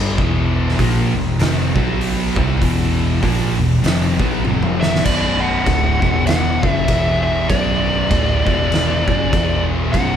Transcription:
0.00 0.17 G1 loud
0.00 0.17 G2 medium
0.00 0.18 D3 medium
0.00 0.18 G3 loud
0.18 0.75 E1 medium
0.18 0.78 E2 loud
0.18 0.78 B2 loud
0.18 0.78 E3 loud
0.18 kick loud
0.69 snare soft
0.78 1.12 A#1 loud
0.78 1.13 A#2 medium
0.78 1.14 F3 loud
0.78 1.14 A#3 loud
0.78 kick loud
0.78 open hi-hat medium
1.14 1.38 E1 medium
1.14 1.35 E2 medium
1.14 1.35 B2 medium
1.39 1.73 F1 loud
1.39 1.74 F2 loud
1.39 1.74 C3 loud
1.39 1.75 F3 loud
1.39 snare loud
1.39 open hi-hat medium
1.75 2.33 B1 medium
1.75 2.35 B2 medium
1.75 2.36 F#3 medium
1.75 2.36 B3 medium
1.75 kick loud
2.01 open hi-hat medium
2.35 2.60 C2 loud
2.35 2.61 C3 medium
2.35 2.61 G3 loud
2.35 2.61 C4 loud
2.35 kick loud
2.61 3.19 E1 medium
2.61 3.21 E2 loud
2.61 3.22 B2 loud
2.61 3.22 E3 loud
2.61 kick medium
2.61 open hi-hat medium
3.22 3.56 A#1 loud
3.22 3.57 A#2 medium
3.22 3.57 F3 loud
3.22 3.58 A#3 medium
3.22 kick loud
3.22 open hi-hat medium
3.57 3.81 E1 medium
3.57 3.78 E2 medium
3.57 3.79 B2 medium
3.82 4.17 F1 loud
3.82 4.18 F2 medium
3.82 4.18 C3 medium
3.82 4.18 F3 loud
3.82 snare loud
3.82 open hi-hat medium
4.18 4.43 B1 loud
4.18 4.43 B2 medium
4.18 4.44 F#3 medium
4.18 4.44 B3 loud
4.18 kick loud
4.44 5.01 F1 medium
4.44 5.05 F2 loud
4.44 5.05 C3 loud
4.44 5.05 F3 loud
4.44 high tom medium
4.63 mid tom medium
4.81 5.05 E5 medium
4.81 snare loud
4.96 snare loud
5.05 5.63 B0 loud
5.05 5.66 B1 medium
5.05 5.66 F#2 loud
5.05 5.66 B2 loud
5.05 5.42 D5 loud
5.05 kick loud
5.05 crash loud
5.05 crash medium
5.40 6.23 F#5 loud
5.66 6.00 D1 loud
5.66 6.01 D2 loud
5.66 6.02 A2 loud
5.66 6.02 D3 loud
5.66 kick loud
5.66 crash medium
6.02 6.59 E1 loud
6.02 6.62 E2 medium
6.02 6.63 B2 loud
6.02 6.63 E3 loud
6.02 kick loud
6.27 6.77 F#5 loud
6.27 snare loud
6.27 crash medium
6.63 6.87 F#1 medium
6.63 6.88 F#2 medium
6.63 6.89 C#3 medium
6.63 6.90 F#3 medium
6.63 kick loud
6.75 7.22 E5 medium
6.88 7.45 E1 medium
6.88 7.49 E2 loud
6.88 7.49 B2 loud
6.88 7.49 E3 loud
6.88 kick loud
6.88 crash medium
7.23 7.49 E5 medium
7.49 8.07 B0 loud
7.49 8.10 B1 loud
7.49 8.10 F#2 loud
7.49 8.10 B2 loud
7.49 9.65 D5 loud
7.49 kick loud
7.49 crash medium
8.11 8.44 D1 loud
8.11 8.45 D2 loud
8.11 8.46 A2 loud
8.11 8.46 D3 loud
8.11 kick loud
8.11 crash medium
8.46 9.04 E1 loud
8.46 9.06 E2 medium
8.46 9.06 B2 loud
8.46 9.07 E3 loud
8.46 kick loud
8.72 snare medium
8.72 crash medium
9.07 9.31 F#1 loud
9.07 9.32 F#2 medium
9.07 9.32 C#3 loud
9.07 9.32 F#3 loud
9.07 kick loud
9.32 9.90 E1 loud
9.32 9.93 E2 loud
9.32 9.93 B2 loud
9.32 9.93 E3 loud
9.32 kick loud
9.32 crash medium
9.92 10.16 B0 medium
9.92 10.16 B1 loud
9.92 10.16 F#2 loud
9.92 10.16 B2 loud
9.92 10.16 F#5 loud
9.92 kick loud
9.92 crash medium

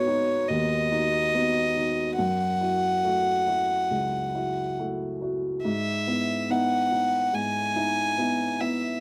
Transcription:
0.00 2.20 G#2 medium
0.00 1.34 B3 soft
0.00 0.06 D#4 soft
0.00 0.07 F#4 soft
0.00 0.49 C#5 medium
0.06 0.44 D#4 soft
0.06 0.45 F#4 soft
0.48 0.90 D#2 soft
0.48 2.17 D#5 medium
0.92 1.30 D#4 soft
0.92 1.30 F#4 soft
1.34 1.72 B3 soft
1.34 1.72 D#4 soft
1.34 1.72 F#4 soft
1.76 2.14 D#4 soft
1.76 2.15 F#4 soft
2.18 2.59 F#2 soft
2.18 4.73 F#5 medium
2.61 3.00 E4 soft
2.61 3.00 F#4 soft
3.04 3.43 A3 soft
3.04 3.43 E4 soft
3.04 3.44 F#4 soft
3.47 3.87 E4 soft
3.47 3.87 F#4 soft
3.91 4.33 C#2 soft
4.35 4.74 E4 soft
4.35 4.74 F#4 soft
4.79 5.18 A3 soft
4.79 5.18 E4 soft
4.79 5.18 F#4 soft
5.21 5.61 E4 soft
5.21 5.61 F#4 soft
5.65 6.06 G#2 soft
5.65 6.52 E5 medium
6.07 6.46 B3 soft
6.07 6.46 E4 soft
6.50 6.88 B3 soft
6.50 6.88 D#4 soft
6.50 6.88 E4 soft
6.50 7.36 F#5 medium
6.91 7.30 D#4 soft
6.91 7.30 E4 soft
7.33 7.74 G#2 soft
7.33 8.61 G#5 medium
7.76 8.14 D#4 soft
7.76 8.14 E4 soft
8.18 8.56 B3 soft
8.18 8.56 D#4 soft
8.18 8.56 E4 soft
8.60 8.98 B3 soft
8.60 8.98 E4 soft
8.60 9.00 E5 medium

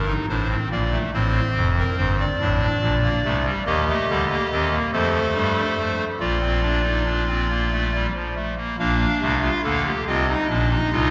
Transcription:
0.00 0.13 G1 medium
0.00 0.13 G2 medium
0.00 0.13 A#4 medium
0.08 0.26 D#4 medium
0.29 0.55 A1 medium
0.29 0.55 A2 medium
0.29 0.48 D4 medium
0.29 0.55 C5 medium
0.50 0.68 C4 medium
0.71 0.97 A#1 medium
0.71 0.97 A#2 medium
0.71 0.90 A#3 medium
0.71 0.98 D5 medium
0.93 1.11 A3 medium
1.14 1.40 A1 medium
1.14 1.40 A2 medium
1.14 2.23 C4 medium
1.14 1.68 C5 medium
1.56 1.82 F1 medium
1.56 1.83 F2 medium
1.78 1.96 A#4 medium
1.98 2.24 G1 medium
1.98 2.24 G2 medium
1.98 2.16 C5 medium
2.20 3.46 D5 medium
2.40 2.66 A1 medium
2.40 2.66 A2 medium
2.40 2.95 D4 medium
2.83 3.09 A#1 medium
2.83 3.08 A#2 medium
3.04 3.22 A#3 medium
3.25 3.51 C2 medium
3.25 3.51 C3 medium
3.25 3.43 A3 medium
3.45 3.63 G3 medium
3.66 3.92 D#2 loud
3.66 3.92 D#3 loud
3.66 3.84 A#3 medium
3.66 4.75 G4 medium
3.66 4.75 D#5 medium
3.89 4.06 A3 medium
4.09 4.35 D2 medium
4.09 4.35 D3 medium
4.09 4.27 G3 medium
4.31 4.48 A#3 medium
4.52 4.78 D#2 medium
4.52 4.78 D#3 medium
4.52 4.70 C4 medium
4.73 4.91 A#3 medium
4.93 5.20 F2 medium
4.93 5.19 F3 medium
4.93 5.76 A3 medium
4.93 6.04 A4 medium
4.93 6.04 C5 medium
5.35 5.62 G2 medium
5.35 5.62 G3 medium
5.78 6.05 A3 medium
6.20 8.07 A#1 medium
6.20 8.06 A#2 medium
6.20 6.39 A#3 medium
6.20 8.06 F4 medium
6.20 8.06 D5 medium
6.42 6.61 C4 medium
6.63 6.82 D4 medium
6.84 7.03 D#4 medium
7.05 7.25 D4 medium
7.28 7.47 C4 medium
7.51 7.69 A#3 medium
7.73 7.91 A3 medium
7.95 8.13 G3 medium
8.16 8.34 F3 medium
8.36 8.55 A3 medium
8.57 8.76 A#3 medium
8.79 9.06 A#1 medium
8.79 9.06 A#2 medium
8.79 9.06 A#3 loud
8.79 9.35 D4 medium
8.79 9.90 F5 medium
9.22 9.49 C2 medium
9.22 9.49 C3 medium
9.22 9.49 A3 loud
9.42 9.61 F4 medium
9.64 9.91 D2 medium
9.64 9.91 D3 medium
9.64 9.91 A#3 medium
9.64 9.83 A4 medium
9.85 10.04 G4 medium
10.07 10.34 C2 medium
10.07 10.34 C3 medium
10.07 10.34 C4 medium
10.07 10.26 F4 medium
10.07 11.11 D#5 medium
10.29 10.47 D#4 medium
10.50 10.76 A#1 medium
10.50 10.76 A#2 medium
10.50 10.76 D4 medium
10.71 10.90 D#4 medium
10.92 11.11 C2 medium
10.92 11.11 C3 medium
10.92 11.11 D#4 loud
10.92 11.11 F4 medium

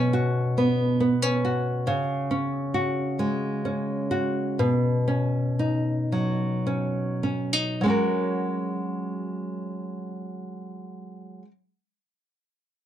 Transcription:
0.00 1.87 B2 medium
0.00 0.14 F#3 medium
0.00 1.00 C#4 soft
0.00 0.13 F#4 soft
0.13 1.44 F#4 medium
0.58 0.99 B3 medium
1.00 1.22 B3 soft
1.22 1.96 C#4 soft
1.45 2.74 F#4 medium
1.87 4.59 C#3 medium
2.31 3.65 C#4 soft
2.74 4.10 F#4 soft
3.19 4.69 G#3 soft
3.65 5.07 C#4 soft
4.11 5.59 F#4 soft
4.59 7.84 B2 medium
5.08 6.66 C#4 soft
5.59 7.23 D#4 soft
6.12 7.81 F#3 soft
6.67 7.23 C#4 soft
7.23 7.53 C#4 soft
7.53 7.87 D#4 soft
7.81 11.42 F#3 soft
7.81 11.45 G#3 medium
7.86 11.47 C#4 medium
7.86 11.49 F#4 medium
7.86 11.51 A#4 medium

